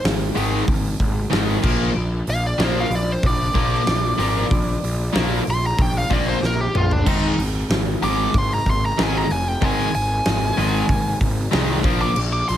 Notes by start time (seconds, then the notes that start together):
0.04 G#1, snare, open hi-hat
0.35 G#1 G#2 D#3 G#3, open hi-hat
0.68 G#1, kick, open hi-hat
1.00 G#1, kick, open hi-hat
1.31 G#1 G#2 D#3 G#3, snare, open hi-hat
1.63 A#1 A#2 F3 A#3, kick, crash
1.96 A#1
2.27 A#1 F5, open hi-hat
2.46 D5
2.59 A#1 A#2 F3 A#3, snare, open hi-hat
2.63 C5
2.80 F5
2.90 A#1, open hi-hat
2.95 D5
3.12 C5
3.23 A#1 D5, kick, open hi-hat
3.55 A#1 A#2 F3 A#3, kick, open hi-hat
3.87 A#1, snare, open hi-hat
4.19 G#1 A#2 F3 A#3, open hi-hat
4.51 A#1, kick, open hi-hat
4.84 A#1, open hi-hat
5.13 A#1 A#2 F3 A#3, snare
5.47 A#1 C6, open hi-hat
5.66 A#5
5.78 A#1 G5, kick, open hi-hat
5.98 F5
6.10 A#1 A#2 F3 A#3 D5, kick, open hi-hat
6.29 C5
6.43 A#1 A#4, snare
6.61 G4
6.75 A#1 F4, mid tom
6.91 D4, floor tom
7.06 G#1 G#2 D#3 G#3 D#4, kick, crash
7.38 G#1, open hi-hat
7.70 G#1, snare
8.02 G#1 G#2 D#3 G#3 D6, open hi-hat
8.34 G#1, kick, open hi-hat
8.38 C6
8.54 A#5
8.66 G#1, kick, open hi-hat
8.70 C6
8.86 A#5
8.98 G#1 G#2 D#3 G#3, snare, open hi-hat
9.03 G#5
9.17 A#5
9.30 F1 G#5, open hi-hat
9.48 G5
9.62 G#1 G#2 D#3 G#3 G#5, kick, open hi-hat
9.94 G#1 G#5, open hi-hat
10.25 G#1, snare, open hi-hat
10.57 G#1 G#2 D#3 G#3, open hi-hat
10.89 G#1, kick, open hi-hat
11.21 G#1, kick, open hi-hat
11.51 C2 G#2 D#3 G#3, snare, open hi-hat
11.84 A#1 A#2 F3 A#3, kick, open hi-hat
12.01 D6
12.16 A#1, crash
12.33 D6
12.48 A#1 C6, open hi-hat